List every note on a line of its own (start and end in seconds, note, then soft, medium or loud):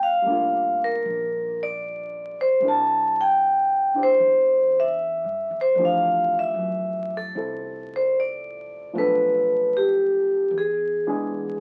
0.00 0.21 G1 medium
0.00 0.83 F5 medium
0.22 1.01 F1 medium
0.22 2.58 G3 soft
0.22 2.62 A#3 soft
0.27 2.61 D4 soft
0.27 2.65 F4 soft
0.33 2.64 A#4 soft
0.84 1.63 A#4 medium
1.05 2.59 A#1 medium
1.63 2.42 D5 medium
2.41 2.63 C5 medium
2.60 4.16 C2 medium
2.60 5.77 G3 soft
2.60 5.78 C4 soft
2.60 3.92 D4 soft
2.64 3.94 E4 soft
2.64 5.79 A#4 soft
2.68 3.20 A5 medium
3.21 4.00 G5 medium
3.94 5.77 D4 soft
3.94 5.79 E4 soft
3.94 5.78 G4 soft
3.94 5.80 C5 soft
4.03 4.80 C5 medium
4.20 5.21 E2 medium
4.80 5.58 E5 medium
5.24 5.49 G2 medium
5.50 5.74 E2 medium
5.61 5.83 C5 medium
5.75 6.51 F2 medium
5.75 8.92 F3 soft
5.75 8.93 A3 soft
5.75 8.93 D4 soft
5.79 8.94 E3 soft
5.79 8.94 G4 soft
5.85 6.36 F5 medium
6.39 7.16 E5 medium
6.54 7.30 F#2 medium
7.17 7.95 A4 medium
7.35 8.89 C2 medium
7.35 8.93 C4 soft
7.35 8.94 E4 soft
7.35 8.94 A4 soft
7.96 8.19 C5 medium
8.20 8.92 D5 medium
8.93 10.48 B1 medium
8.93 10.51 F3 soft
8.93 10.51 A3 soft
8.93 10.52 B3 soft
8.93 10.53 D4 soft
8.98 10.53 A4 soft
8.98 9.77 B4 medium
9.77 10.56 G4 medium
10.50 11.52 E2 medium
10.58 11.60 G#4 medium
11.07 11.60 E3 soft
11.07 11.60 G#3 soft
11.07 11.60 B3 soft
11.07 11.60 D4 soft
11.07 11.60 G#4 medium